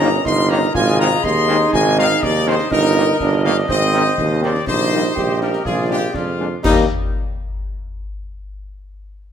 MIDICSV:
0, 0, Header, 1, 8, 480
1, 0, Start_track
1, 0, Key_signature, -3, "major"
1, 0, Tempo, 490998
1, 732, Time_signature, 2, 2, 24, 8
1, 9119, End_track
2, 0, Start_track
2, 0, Title_t, "Trumpet section"
2, 0, Program_c, 0, 61
2, 0, Note_on_c, 0, 82, 127
2, 249, Note_on_c, 0, 84, 127
2, 250, Note_off_c, 0, 82, 0
2, 473, Note_off_c, 0, 84, 0
2, 487, Note_on_c, 0, 82, 127
2, 730, Note_off_c, 0, 82, 0
2, 732, Note_on_c, 0, 80, 127
2, 956, Note_off_c, 0, 80, 0
2, 973, Note_on_c, 0, 82, 127
2, 1196, Note_off_c, 0, 82, 0
2, 1212, Note_on_c, 0, 84, 127
2, 1692, Note_off_c, 0, 84, 0
2, 1693, Note_on_c, 0, 80, 127
2, 1916, Note_off_c, 0, 80, 0
2, 1936, Note_on_c, 0, 77, 127
2, 2158, Note_off_c, 0, 77, 0
2, 2174, Note_on_c, 0, 74, 124
2, 2414, Note_off_c, 0, 74, 0
2, 2422, Note_on_c, 0, 72, 123
2, 2657, Note_off_c, 0, 72, 0
2, 2658, Note_on_c, 0, 70, 127
2, 3337, Note_off_c, 0, 70, 0
2, 3369, Note_on_c, 0, 77, 120
2, 3478, Note_off_c, 0, 77, 0
2, 3611, Note_on_c, 0, 75, 124
2, 4293, Note_off_c, 0, 75, 0
2, 4330, Note_on_c, 0, 74, 114
2, 4568, Note_on_c, 0, 72, 127
2, 4572, Note_off_c, 0, 74, 0
2, 5251, Note_off_c, 0, 72, 0
2, 5286, Note_on_c, 0, 70, 106
2, 5527, Note_on_c, 0, 68, 111
2, 5529, Note_off_c, 0, 70, 0
2, 5753, Note_off_c, 0, 68, 0
2, 5768, Note_on_c, 0, 67, 115
2, 5994, Note_off_c, 0, 67, 0
2, 6008, Note_on_c, 0, 65, 108
2, 6482, Note_on_c, 0, 63, 118
2, 6490, Note_off_c, 0, 65, 0
2, 6686, Note_off_c, 0, 63, 0
2, 9119, End_track
3, 0, Start_track
3, 0, Title_t, "Woodwind section"
3, 0, Program_c, 1, 71
3, 0, Note_on_c, 1, 70, 97
3, 0, Note_on_c, 1, 75, 96
3, 689, Note_off_c, 1, 70, 0
3, 691, Note_off_c, 1, 75, 0
3, 739, Note_on_c, 1, 68, 115
3, 741, Note_on_c, 1, 75, 106
3, 2617, Note_off_c, 1, 68, 0
3, 2618, Note_off_c, 1, 75, 0
3, 2645, Note_on_c, 1, 70, 95
3, 2645, Note_on_c, 1, 75, 105
3, 3570, Note_off_c, 1, 70, 0
3, 3601, Note_on_c, 1, 72, 104
3, 4530, Note_off_c, 1, 75, 0
3, 4567, Note_off_c, 1, 72, 0
3, 4570, Note_on_c, 1, 75, 92
3, 4576, Note_on_c, 1, 67, 93
3, 5492, Note_off_c, 1, 75, 0
3, 5495, Note_off_c, 1, 67, 0
3, 5531, Note_on_c, 1, 74, 85
3, 5536, Note_on_c, 1, 68, 88
3, 6252, Note_off_c, 1, 74, 0
3, 6254, Note_off_c, 1, 68, 0
3, 6493, Note_on_c, 1, 75, 97
3, 6496, Note_on_c, 1, 67, 101
3, 6694, Note_off_c, 1, 75, 0
3, 6695, Note_off_c, 1, 67, 0
3, 9119, End_track
4, 0, Start_track
4, 0, Title_t, "Euphonium"
4, 0, Program_c, 2, 58
4, 0, Note_on_c, 2, 61, 114
4, 219, Note_off_c, 2, 61, 0
4, 248, Note_on_c, 2, 63, 112
4, 696, Note_off_c, 2, 63, 0
4, 727, Note_on_c, 2, 65, 127
4, 1176, Note_off_c, 2, 65, 0
4, 1215, Note_on_c, 2, 63, 127
4, 2615, Note_off_c, 2, 63, 0
4, 2645, Note_on_c, 2, 63, 127
4, 3095, Note_off_c, 2, 63, 0
4, 3129, Note_on_c, 2, 62, 120
4, 3577, Note_off_c, 2, 62, 0
4, 3610, Note_on_c, 2, 60, 122
4, 4259, Note_off_c, 2, 60, 0
4, 4564, Note_on_c, 2, 63, 116
4, 5015, Note_off_c, 2, 63, 0
4, 5040, Note_on_c, 2, 67, 113
4, 5492, Note_off_c, 2, 67, 0
4, 5527, Note_on_c, 2, 65, 109
4, 5976, Note_off_c, 2, 65, 0
4, 6012, Note_on_c, 2, 62, 86
4, 6120, Note_off_c, 2, 62, 0
4, 9119, End_track
5, 0, Start_track
5, 0, Title_t, "French horn section"
5, 0, Program_c, 3, 60
5, 17, Note_on_c, 3, 58, 90
5, 17, Note_on_c, 3, 63, 89
5, 18, Note_on_c, 3, 61, 99
5, 102, Note_off_c, 3, 58, 0
5, 102, Note_off_c, 3, 63, 0
5, 103, Note_off_c, 3, 61, 0
5, 498, Note_on_c, 3, 61, 94
5, 500, Note_on_c, 3, 63, 98
5, 503, Note_on_c, 3, 58, 85
5, 583, Note_off_c, 3, 61, 0
5, 585, Note_off_c, 3, 63, 0
5, 587, Note_off_c, 3, 58, 0
5, 976, Note_on_c, 3, 63, 99
5, 977, Note_on_c, 3, 56, 95
5, 977, Note_on_c, 3, 60, 99
5, 1062, Note_off_c, 3, 56, 0
5, 1062, Note_off_c, 3, 60, 0
5, 1062, Note_off_c, 3, 63, 0
5, 1450, Note_on_c, 3, 60, 92
5, 1450, Note_on_c, 3, 63, 99
5, 1454, Note_on_c, 3, 56, 93
5, 1537, Note_off_c, 3, 60, 0
5, 1537, Note_off_c, 3, 63, 0
5, 1541, Note_off_c, 3, 56, 0
5, 1934, Note_on_c, 3, 60, 102
5, 1934, Note_on_c, 3, 63, 86
5, 1935, Note_on_c, 3, 56, 93
5, 2020, Note_off_c, 3, 60, 0
5, 2020, Note_off_c, 3, 63, 0
5, 2021, Note_off_c, 3, 56, 0
5, 2412, Note_on_c, 3, 63, 86
5, 2414, Note_on_c, 3, 60, 88
5, 2417, Note_on_c, 3, 56, 91
5, 2499, Note_off_c, 3, 63, 0
5, 2500, Note_off_c, 3, 60, 0
5, 2502, Note_off_c, 3, 56, 0
5, 2882, Note_on_c, 3, 63, 96
5, 2886, Note_off_c, 3, 63, 0
5, 2886, Note_on_c, 3, 63, 89
5, 2887, Note_on_c, 3, 58, 94
5, 2974, Note_off_c, 3, 63, 0
5, 2975, Note_off_c, 3, 58, 0
5, 3370, Note_on_c, 3, 63, 89
5, 3371, Note_on_c, 3, 58, 89
5, 3372, Note_off_c, 3, 63, 0
5, 3372, Note_on_c, 3, 63, 90
5, 3458, Note_off_c, 3, 58, 0
5, 3459, Note_off_c, 3, 63, 0
5, 3845, Note_on_c, 3, 56, 89
5, 3847, Note_on_c, 3, 60, 95
5, 3849, Note_on_c, 3, 63, 90
5, 3934, Note_off_c, 3, 56, 0
5, 3935, Note_off_c, 3, 60, 0
5, 3937, Note_off_c, 3, 63, 0
5, 4323, Note_on_c, 3, 60, 80
5, 4324, Note_on_c, 3, 56, 81
5, 4326, Note_on_c, 3, 63, 83
5, 4412, Note_off_c, 3, 56, 0
5, 4412, Note_off_c, 3, 60, 0
5, 4414, Note_off_c, 3, 63, 0
5, 4816, Note_on_c, 3, 58, 88
5, 4818, Note_on_c, 3, 55, 78
5, 4820, Note_on_c, 3, 63, 87
5, 4902, Note_off_c, 3, 58, 0
5, 4904, Note_off_c, 3, 55, 0
5, 4905, Note_off_c, 3, 63, 0
5, 5290, Note_on_c, 3, 58, 71
5, 5292, Note_on_c, 3, 55, 83
5, 5293, Note_on_c, 3, 63, 73
5, 5377, Note_off_c, 3, 58, 0
5, 5379, Note_off_c, 3, 55, 0
5, 5380, Note_off_c, 3, 63, 0
5, 5769, Note_on_c, 3, 62, 80
5, 5772, Note_on_c, 3, 58, 75
5, 5774, Note_on_c, 3, 56, 77
5, 5856, Note_off_c, 3, 62, 0
5, 5858, Note_off_c, 3, 58, 0
5, 5860, Note_off_c, 3, 56, 0
5, 6255, Note_on_c, 3, 62, 77
5, 6256, Note_on_c, 3, 58, 69
5, 6257, Note_on_c, 3, 56, 66
5, 6341, Note_off_c, 3, 62, 0
5, 6342, Note_off_c, 3, 56, 0
5, 6342, Note_off_c, 3, 58, 0
5, 6497, Note_on_c, 3, 55, 98
5, 6497, Note_on_c, 3, 58, 92
5, 6498, Note_on_c, 3, 63, 95
5, 6696, Note_off_c, 3, 55, 0
5, 6696, Note_off_c, 3, 58, 0
5, 6697, Note_off_c, 3, 63, 0
5, 9119, End_track
6, 0, Start_track
6, 0, Title_t, "Trombone section"
6, 0, Program_c, 4, 61
6, 8, Note_on_c, 4, 58, 108
6, 93, Note_off_c, 4, 58, 0
6, 471, Note_on_c, 4, 58, 113
6, 474, Note_on_c, 4, 51, 108
6, 562, Note_off_c, 4, 58, 0
6, 564, Note_off_c, 4, 51, 0
6, 963, Note_on_c, 4, 56, 111
6, 967, Note_on_c, 4, 51, 110
6, 1050, Note_off_c, 4, 56, 0
6, 1052, Note_off_c, 4, 51, 0
6, 1441, Note_on_c, 4, 56, 111
6, 1446, Note_on_c, 4, 51, 113
6, 1529, Note_off_c, 4, 56, 0
6, 1532, Note_off_c, 4, 51, 0
6, 1930, Note_on_c, 4, 51, 106
6, 1935, Note_on_c, 4, 56, 104
6, 2014, Note_off_c, 4, 51, 0
6, 2018, Note_off_c, 4, 56, 0
6, 2403, Note_on_c, 4, 56, 105
6, 2410, Note_on_c, 4, 51, 120
6, 2490, Note_off_c, 4, 56, 0
6, 2495, Note_off_c, 4, 51, 0
6, 2886, Note_on_c, 4, 58, 100
6, 2889, Note_on_c, 4, 51, 101
6, 2972, Note_off_c, 4, 58, 0
6, 2974, Note_off_c, 4, 51, 0
6, 3361, Note_on_c, 4, 51, 113
6, 3367, Note_on_c, 4, 58, 107
6, 3449, Note_off_c, 4, 51, 0
6, 3453, Note_off_c, 4, 58, 0
6, 3843, Note_on_c, 4, 51, 108
6, 3843, Note_on_c, 4, 60, 100
6, 3930, Note_off_c, 4, 51, 0
6, 3930, Note_off_c, 4, 60, 0
6, 4326, Note_on_c, 4, 51, 108
6, 4330, Note_on_c, 4, 60, 103
6, 4412, Note_off_c, 4, 51, 0
6, 4415, Note_off_c, 4, 60, 0
6, 4818, Note_on_c, 4, 63, 96
6, 4824, Note_on_c, 4, 55, 97
6, 4900, Note_off_c, 4, 63, 0
6, 4904, Note_off_c, 4, 55, 0
6, 5283, Note_on_c, 4, 55, 94
6, 5285, Note_on_c, 4, 63, 92
6, 5370, Note_off_c, 4, 55, 0
6, 5372, Note_off_c, 4, 63, 0
6, 5766, Note_on_c, 4, 62, 83
6, 5767, Note_on_c, 4, 56, 94
6, 5852, Note_off_c, 4, 62, 0
6, 5853, Note_off_c, 4, 56, 0
6, 6246, Note_on_c, 4, 56, 88
6, 6254, Note_on_c, 4, 62, 96
6, 6332, Note_off_c, 4, 56, 0
6, 6337, Note_off_c, 4, 62, 0
6, 6480, Note_on_c, 4, 63, 111
6, 6482, Note_on_c, 4, 55, 108
6, 6685, Note_off_c, 4, 63, 0
6, 6687, Note_off_c, 4, 55, 0
6, 9119, End_track
7, 0, Start_track
7, 0, Title_t, "Tuba"
7, 0, Program_c, 5, 58
7, 0, Note_on_c, 5, 31, 123
7, 172, Note_off_c, 5, 31, 0
7, 250, Note_on_c, 5, 31, 118
7, 651, Note_off_c, 5, 31, 0
7, 734, Note_on_c, 5, 32, 120
7, 1133, Note_off_c, 5, 32, 0
7, 1212, Note_on_c, 5, 39, 112
7, 1612, Note_off_c, 5, 39, 0
7, 1700, Note_on_c, 5, 32, 127
7, 2096, Note_off_c, 5, 32, 0
7, 2178, Note_on_c, 5, 39, 112
7, 2534, Note_off_c, 5, 39, 0
7, 2653, Note_on_c, 5, 31, 124
7, 3053, Note_off_c, 5, 31, 0
7, 3137, Note_on_c, 5, 31, 121
7, 3535, Note_off_c, 5, 31, 0
7, 3611, Note_on_c, 5, 32, 122
7, 4012, Note_off_c, 5, 32, 0
7, 4092, Note_on_c, 5, 39, 113
7, 4492, Note_off_c, 5, 39, 0
7, 4575, Note_on_c, 5, 34, 112
7, 4974, Note_off_c, 5, 34, 0
7, 5050, Note_on_c, 5, 34, 103
7, 5451, Note_off_c, 5, 34, 0
7, 5530, Note_on_c, 5, 34, 107
7, 5931, Note_off_c, 5, 34, 0
7, 6013, Note_on_c, 5, 41, 98
7, 6412, Note_off_c, 5, 41, 0
7, 6492, Note_on_c, 5, 39, 108
7, 6693, Note_off_c, 5, 39, 0
7, 9119, End_track
8, 0, Start_track
8, 0, Title_t, "Drums"
8, 7, Note_on_c, 9, 38, 73
8, 105, Note_off_c, 9, 38, 0
8, 125, Note_on_c, 9, 38, 56
8, 223, Note_off_c, 9, 38, 0
8, 249, Note_on_c, 9, 35, 80
8, 249, Note_on_c, 9, 38, 84
8, 347, Note_off_c, 9, 35, 0
8, 347, Note_off_c, 9, 38, 0
8, 487, Note_on_c, 9, 38, 67
8, 585, Note_off_c, 9, 38, 0
8, 616, Note_on_c, 9, 38, 65
8, 714, Note_off_c, 9, 38, 0
8, 730, Note_on_c, 9, 35, 104
8, 730, Note_on_c, 9, 38, 87
8, 730, Note_on_c, 9, 49, 35
8, 828, Note_off_c, 9, 35, 0
8, 828, Note_off_c, 9, 38, 0
8, 828, Note_off_c, 9, 49, 0
8, 853, Note_on_c, 9, 38, 69
8, 951, Note_off_c, 9, 38, 0
8, 975, Note_on_c, 9, 38, 72
8, 1073, Note_off_c, 9, 38, 0
8, 1209, Note_on_c, 9, 35, 89
8, 1209, Note_on_c, 9, 38, 84
8, 1307, Note_off_c, 9, 35, 0
8, 1307, Note_off_c, 9, 38, 0
8, 1452, Note_on_c, 9, 38, 68
8, 1550, Note_off_c, 9, 38, 0
8, 1575, Note_on_c, 9, 38, 68
8, 1673, Note_off_c, 9, 38, 0
8, 1693, Note_on_c, 9, 35, 99
8, 1693, Note_on_c, 9, 38, 86
8, 1791, Note_off_c, 9, 35, 0
8, 1791, Note_off_c, 9, 38, 0
8, 1937, Note_on_c, 9, 38, 70
8, 2035, Note_off_c, 9, 38, 0
8, 2061, Note_on_c, 9, 38, 50
8, 2158, Note_off_c, 9, 38, 0
8, 2177, Note_on_c, 9, 35, 85
8, 2177, Note_on_c, 9, 38, 87
8, 2275, Note_off_c, 9, 35, 0
8, 2275, Note_off_c, 9, 38, 0
8, 2420, Note_on_c, 9, 38, 68
8, 2518, Note_off_c, 9, 38, 0
8, 2536, Note_on_c, 9, 38, 68
8, 2633, Note_off_c, 9, 38, 0
8, 2653, Note_on_c, 9, 35, 86
8, 2653, Note_on_c, 9, 38, 94
8, 2653, Note_on_c, 9, 49, 36
8, 2750, Note_off_c, 9, 35, 0
8, 2750, Note_off_c, 9, 38, 0
8, 2750, Note_off_c, 9, 49, 0
8, 2777, Note_on_c, 9, 38, 69
8, 2875, Note_off_c, 9, 38, 0
8, 2893, Note_on_c, 9, 38, 62
8, 2991, Note_off_c, 9, 38, 0
8, 3131, Note_on_c, 9, 35, 91
8, 3131, Note_on_c, 9, 38, 83
8, 3229, Note_off_c, 9, 35, 0
8, 3229, Note_off_c, 9, 38, 0
8, 3370, Note_on_c, 9, 38, 60
8, 3468, Note_off_c, 9, 38, 0
8, 3487, Note_on_c, 9, 38, 65
8, 3584, Note_off_c, 9, 38, 0
8, 3606, Note_on_c, 9, 35, 94
8, 3606, Note_on_c, 9, 38, 86
8, 3704, Note_off_c, 9, 35, 0
8, 3704, Note_off_c, 9, 38, 0
8, 3846, Note_on_c, 9, 38, 72
8, 3944, Note_off_c, 9, 38, 0
8, 3963, Note_on_c, 9, 38, 58
8, 4061, Note_off_c, 9, 38, 0
8, 4086, Note_on_c, 9, 35, 85
8, 4086, Note_on_c, 9, 38, 78
8, 4184, Note_off_c, 9, 35, 0
8, 4184, Note_off_c, 9, 38, 0
8, 4329, Note_on_c, 9, 38, 60
8, 4427, Note_off_c, 9, 38, 0
8, 4445, Note_on_c, 9, 38, 67
8, 4543, Note_off_c, 9, 38, 0
8, 4566, Note_on_c, 9, 35, 91
8, 4566, Note_on_c, 9, 38, 83
8, 4566, Note_on_c, 9, 49, 36
8, 4664, Note_off_c, 9, 35, 0
8, 4664, Note_off_c, 9, 38, 0
8, 4664, Note_off_c, 9, 49, 0
8, 4689, Note_on_c, 9, 38, 67
8, 4787, Note_off_c, 9, 38, 0
8, 4810, Note_on_c, 9, 38, 68
8, 4908, Note_off_c, 9, 38, 0
8, 5054, Note_on_c, 9, 35, 83
8, 5054, Note_on_c, 9, 38, 75
8, 5152, Note_off_c, 9, 35, 0
8, 5152, Note_off_c, 9, 38, 0
8, 5291, Note_on_c, 9, 38, 67
8, 5389, Note_off_c, 9, 38, 0
8, 5409, Note_on_c, 9, 38, 65
8, 5507, Note_off_c, 9, 38, 0
8, 5528, Note_on_c, 9, 35, 91
8, 5528, Note_on_c, 9, 38, 66
8, 5625, Note_off_c, 9, 35, 0
8, 5625, Note_off_c, 9, 38, 0
8, 6006, Note_on_c, 9, 35, 83
8, 6006, Note_on_c, 9, 38, 77
8, 6104, Note_off_c, 9, 35, 0
8, 6104, Note_off_c, 9, 38, 0
8, 6493, Note_on_c, 9, 35, 110
8, 6493, Note_on_c, 9, 38, 99
8, 6493, Note_on_c, 9, 49, 95
8, 6591, Note_off_c, 9, 35, 0
8, 6591, Note_off_c, 9, 38, 0
8, 6591, Note_off_c, 9, 49, 0
8, 9119, End_track
0, 0, End_of_file